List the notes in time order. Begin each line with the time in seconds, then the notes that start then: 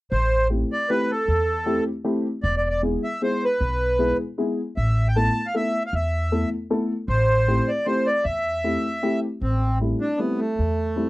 0.11 A1 C5
0.50 A3 C4 E4 G4
0.72 D5
0.89 A3 C4 E4 G4 B4
1.11 A4
1.28 E2
1.66 A3 C4 E4 G4
2.04 A3 C4 E4 G4
2.43 E1 D5
2.57 D5
2.70 D5
2.82 G#3 B3 E4 G#4
3.04 E5
3.22 G#3 B3 E4 G#4 C5
3.44 B4
3.61 B1
3.99 G#3 B3 E4 G#4
4.38 G#3 B3 E4 G#4
4.77 A1 E5
5.08 G5
5.16 A3 B3 E4 A4 A5
5.46 F5
5.54 A3 B3 E4 A4 E5
5.86 F5
5.93 E2 E5
6.32 A3 B3 E4 A4
6.70 A3 B3 E4 A4
7.08 A1 C5
7.48 A3 C4 E4 G4
7.68 D5
7.85 A3 C4 E4 G4 C5
8.07 D5
8.24 E2 E5
8.64 A3 C4 E4 G4
9.03 A3 C4 E4 G4
9.41 A1 C4
9.81 G3 A3 C4 E4
10.01 D4
10.17 G3 A3 B3 C4 E4
10.38 A3
10.59 E2
10.96 G3 A3 C4 E4